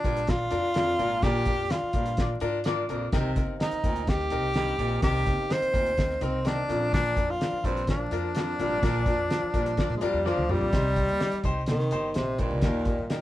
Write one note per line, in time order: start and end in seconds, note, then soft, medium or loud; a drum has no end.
0.00 0.31 D4 medium
0.04 0.46 A#1 medium
0.04 0.23 G2 medium
0.04 0.20 D4 medium
0.04 0.20 F4 medium
0.04 0.20 A#4 medium
0.04 kick medium
0.04 closed hi-hat medium
0.17 closed hi-hat medium
0.27 0.43 D4 medium
0.27 0.44 F4 medium
0.27 1.25 F4 loud
0.27 0.44 A#4 medium
0.27 kick medium
0.27 snare loud
0.27 closed hi-hat medium
0.51 0.93 F2 loud
0.51 0.67 D4 loud
0.51 0.67 F4 medium
0.51 0.67 A#4 loud
0.51 closed hi-hat medium
0.74 0.94 F2 medium
0.74 0.91 D4 medium
0.74 0.91 F4 medium
0.74 0.91 A#4 medium
0.74 snare loud
0.74 closed hi-hat medium
0.99 1.20 G#1 medium
0.99 1.66 A#2 medium
0.99 1.18 A#2 medium
0.99 1.15 D4 medium
0.99 1.15 F4 medium
0.99 1.15 A#4 loud
0.99 closed hi-hat medium
1.22 1.43 A#1 loud
1.22 1.57 A#2 medium
1.22 1.39 D4 loud
1.22 1.39 F4 medium
1.22 1.73 G4 loud
1.22 1.39 A#4 medium
1.22 kick loud
1.22 snare loud
1.22 closed hi-hat medium
1.45 1.67 F2 medium
1.45 1.62 D4 medium
1.45 1.63 F4 medium
1.45 1.63 A#4 medium
1.45 kick medium
1.45 closed hi-hat medium
1.70 1.86 D4 medium
1.70 1.86 F4 medium
1.70 2.42 F4 loud
1.70 1.86 A#4 medium
1.70 snare loud
1.70 closed hi-hat medium
1.82 muted upright bass stroke soft
1.93 2.13 G2 medium
1.93 2.35 A#2 medium
1.93 2.10 D4 medium
1.93 2.10 F4 medium
1.93 2.10 A#4 medium
1.93 kick medium
1.93 closed hi-hat medium
2.06 closed hi-hat medium
2.17 2.28 A#3 medium
2.17 2.34 D4 medium
2.17 2.28 F4 medium
2.17 2.34 F4 medium
2.17 2.34 A#4 medium
2.17 2.28 D5 medium
2.17 kick medium
2.17 snare loud
2.17 closed hi-hat medium
2.40 2.83 G#2 medium
2.40 2.57 D4 loud
2.40 2.57 F4 loud
2.40 2.57 A#4 loud
2.40 closed hi-hat medium
2.64 3.10 A#3 medium
2.64 2.81 D4 loud
2.64 3.10 F4 medium
2.64 2.81 F4 medium
2.64 2.82 A#4 loud
2.64 3.10 D5 loud
2.64 snare loud
2.64 closed hi-hat medium
2.89 3.10 A#1 medium
2.89 3.08 F2 medium
2.89 3.05 D4 medium
2.89 3.05 F4 medium
2.89 3.05 A#4 loud
2.89 closed hi-hat medium
3.12 3.38 C2 loud
3.12 3.80 C3 medium
3.12 3.46 C3 medium
3.12 10.69 A#3 medium
3.12 3.29 C4 loud
3.12 6.65 C4 medium
3.12 6.65 D#4 medium
3.12 3.29 D#4 loud
3.12 3.29 A#4 loud
3.12 kick loud
3.12 snare loud
3.12 closed hi-hat medium
3.36 3.57 G1 medium
3.36 3.52 C4 medium
3.36 3.53 D#4 medium
3.36 3.53 A#4 medium
3.36 kick loud
3.36 closed hi-hat medium
3.60 3.76 C4 medium
3.60 3.76 D#4 medium
3.60 4.11 D#4 loud
3.60 3.76 A#4 medium
3.60 snare loud
3.60 closed hi-hat medium
3.71 muted upright bass stroke soft
3.71 closed hi-hat medium
3.84 4.32 D2 medium
3.84 4.03 A#2 medium
3.84 4.00 C4 medium
3.84 4.00 D#4 medium
3.84 4.00 A#4 medium
3.84 kick loud
3.84 closed hi-hat medium
3.96 closed hi-hat medium
4.07 4.23 C4 medium
4.07 4.23 D#4 medium
4.07 5.03 G4 loud
4.07 4.23 A#4 medium
4.07 kick medium
4.07 snare loud
4.07 closed hi-hat medium
4.19 snare soft
4.30 4.72 C2 medium
4.30 4.47 C4 medium
4.30 4.47 D#4 medium
4.30 4.47 A#4 loud
4.30 closed hi-hat medium
4.54 4.74 G2 medium
4.54 4.71 C4 medium
4.54 4.71 D#4 medium
4.54 4.71 A#4 loud
4.54 snare loud
4.54 closed hi-hat medium
4.78 4.99 A#1 loud
4.78 4.98 A#2 medium
4.78 4.95 C4 medium
4.78 4.95 D#4 medium
4.78 4.96 A#4 medium
4.78 closed hi-hat medium
5.02 5.28 C2 loud
5.02 5.36 C3 medium
5.02 5.70 C3 medium
5.02 5.18 C4 medium
5.02 5.19 D#4 medium
5.02 5.54 G4 loud
5.02 5.19 A#4 loud
5.02 kick loud
5.02 snare loud
5.02 closed hi-hat medium
5.26 5.47 G1 medium
5.26 5.42 C4 medium
5.26 5.42 D#4 medium
5.26 5.43 A#4 medium
5.26 kick loud
5.26 closed hi-hat medium
5.49 5.66 C4 medium
5.49 5.66 D#4 medium
5.49 5.66 A#4 medium
5.49 6.25 C5 loud
5.49 snare loud
5.49 closed hi-hat medium
5.62 muted upright bass stroke soft
5.62 closed hi-hat medium
5.72 6.15 D2 medium
5.72 5.93 A#2 medium
5.72 5.89 C4 medium
5.72 5.89 D#4 medium
5.72 5.89 A#4 medium
5.72 kick loud
5.72 closed hi-hat medium
5.86 closed hi-hat medium
5.97 6.14 C4 medium
5.97 6.14 D#4 medium
5.97 6.14 A#4 medium
5.97 kick medium
5.97 snare loud
5.97 closed hi-hat medium
6.10 snare soft
6.21 6.62 C2 medium
6.21 6.37 C4 loud
6.21 6.48 C4 medium
6.21 6.37 D#4 medium
6.21 6.38 A#4 loud
6.21 closed hi-hat medium
6.45 6.61 C4 medium
6.45 6.93 D4 medium
6.45 6.61 D#4 medium
6.45 6.61 A#4 loud
6.45 snare loud
6.45 closed hi-hat medium
6.68 7.10 A#1 loud
6.68 6.88 F2 medium
6.68 7.36 A#2 medium
6.68 10.69 F3 medium
6.68 6.75 C#4 medium
6.68 10.69 D4 medium
6.68 7.07 F4 medium
6.68 7.07 A#4 medium
6.68 closed hi-hat medium
6.75 7.10 D4 medium
6.93 7.26 A#2 medium
6.93 7.32 D4 loud
6.93 kick loud
6.93 snare loud
6.93 closed hi-hat medium
7.16 7.37 F2 medium
7.16 7.32 D4 medium
7.16 7.33 F4 medium
7.16 7.33 A#4 medium
7.16 kick loud
7.16 closed hi-hat medium
7.30 7.67 F4 loud
7.41 7.56 D4 medium
7.41 7.57 F4 medium
7.41 7.57 A#4 medium
7.41 snare loud
7.41 closed hi-hat medium
7.52 muted upright bass stroke soft
7.64 8.05 A#1 medium
7.64 7.83 G2 medium
7.64 7.88 C4 medium
7.64 7.80 D4 medium
7.64 7.80 F4 medium
7.64 7.80 A#4 medium
7.64 kick medium
7.64 closed hi-hat medium
7.77 closed hi-hat medium
7.87 8.04 D4 medium
7.87 9.93 D4 loud
7.87 8.04 F4 medium
7.87 8.04 A#4 medium
7.87 kick medium
7.87 snare loud
7.87 closed hi-hat medium
8.11 8.53 F2 medium
8.11 8.27 D4 loud
8.11 8.28 F4 medium
8.11 8.28 A#4 loud
8.11 closed hi-hat medium
8.35 8.54 F2 medium
8.35 8.51 D4 medium
8.35 8.51 F4 medium
8.35 8.51 A#4 medium
8.35 snare loud
8.35 closed hi-hat medium
8.59 8.79 G#1 medium
8.59 8.78 G2 medium
8.59 9.27 A#2 medium
8.59 8.75 D4 medium
8.59 8.75 F4 medium
8.59 8.75 A#4 medium
8.59 closed hi-hat medium
8.82 9.03 A#1 loud
8.82 9.16 A#2 medium
8.82 8.98 D4 loud
8.82 8.98 F4 loud
8.82 8.99 A#4 loud
8.82 kick loud
8.82 snare loud
8.82 closed hi-hat loud
9.06 9.27 F2 medium
9.06 9.22 D4 medium
9.06 9.22 F4 medium
9.06 9.22 A#4 medium
9.06 kick loud
9.06 closed hi-hat medium
9.30 9.46 D4 medium
9.30 9.46 F4 medium
9.30 9.46 A#4 medium
9.30 snare loud
9.30 closed hi-hat loud
9.43 muted upright bass stroke soft
9.54 9.73 G2 medium
9.54 9.75 A#2 medium
9.54 9.70 D4 medium
9.54 9.70 F4 medium
9.54 9.70 A#4 loud
9.54 kick loud
9.54 closed hi-hat medium
9.66 closed hi-hat medium
9.77 9.87 A#3 medium
9.77 9.93 D4 medium
9.77 9.88 F4 medium
9.77 9.94 F4 medium
9.77 9.94 A#4 medium
9.77 9.88 D5 medium
9.77 kick medium
9.77 snare loud
9.77 closed hi-hat medium
9.90 10.00 A#2 medium
9.90 snare soft
9.97 10.05 G#3 medium
10.01 10.15 G2 medium
10.01 10.29 G3 loud
10.01 10.17 D4 loud
10.01 10.17 F4 loud
10.01 10.18 A#4 loud
10.01 closed hi-hat medium
10.13 10.34 F2 medium
10.24 10.53 F3 loud
10.24 10.70 A#3 medium
10.24 10.41 D4 loud
10.24 10.70 F4 medium
10.24 10.41 F4 medium
10.24 10.41 A#4 loud
10.24 10.70 D5 medium
10.24 snare medium
10.37 10.48 D2 medium
10.37 high tom medium
10.49 10.70 A#1 medium
10.49 10.68 F2 medium
10.49 11.52 G3 loud
10.49 10.65 D4 medium
10.49 10.65 F4 medium
10.49 10.65 A#4 medium
10.49 mid tom medium
10.61 floor tom medium
10.73 11.04 C2 loud
10.73 11.06 C3 medium
10.73 11.40 C3 medium
10.73 10.88 D#4 medium
10.73 10.89 G4 medium
10.73 10.89 C5 loud
10.73 kick loud
10.73 snare loud
10.73 closed hi-hat medium
10.96 11.12 D#4 medium
10.96 11.13 G4 medium
10.96 11.13 C5 medium
10.96 kick medium
10.96 closed hi-hat medium
11.08 11.19 D#2 medium
11.08 closed hi-hat soft
11.20 11.36 D#4 medium
11.20 11.36 G4 medium
11.20 11.36 D5 medium
11.20 snare medium
11.20 closed hi-hat medium
11.32 muted upright bass stroke soft
11.32 closed hi-hat soft
11.44 11.70 C2 medium
11.44 11.60 D#4 loud
11.44 11.60 G4 loud
11.44 11.60 C5 loud
11.44 kick medium
11.44 closed hi-hat medium
11.66 11.89 C3 medium
11.66 12.18 D#3 loud
11.66 11.84 D#4 medium
11.66 11.84 G4 medium
11.66 11.84 C5 medium
11.66 snare loud
11.66 closed hi-hat medium
11.79 snare soft
11.91 12.13 G1 medium
11.91 12.08 D#4 medium
11.91 12.08 G4 medium
11.91 12.08 C5 loud
11.91 closed hi-hat medium
12.14 12.47 A#1 medium
12.14 12.41 C3 medium
12.14 12.31 D#4 medium
12.14 12.31 G4 medium
12.14 12.31 C5 medium
12.14 snare loud
12.14 closed hi-hat medium
12.38 12.58 G2 medium
12.38 13.21 A#2 medium
12.38 12.54 D#4 medium
12.38 12.55 G4 medium
12.38 12.55 C5 medium
12.38 kick medium
12.38 closed hi-hat medium
12.50 12.62 C2 medium
12.62 12.94 D#2 loud
12.62 12.96 D#2 medium
12.62 13.21 D#3 medium
12.62 12.79 D#4 medium
12.62 12.79 G4 medium
12.62 12.79 A#4 loud
12.62 kick loud
12.62 snare loud
12.62 closed hi-hat medium
12.85 13.03 D#4 medium
12.85 13.03 G4 medium
12.85 13.03 A#4 medium
12.85 kick loud
12.85 closed hi-hat medium
12.98 13.09 G2 medium
13.10 13.21 D#4 medium
13.10 13.21 G4 medium
13.10 13.21 A#4 medium
13.10 snare loud
13.10 closed hi-hat medium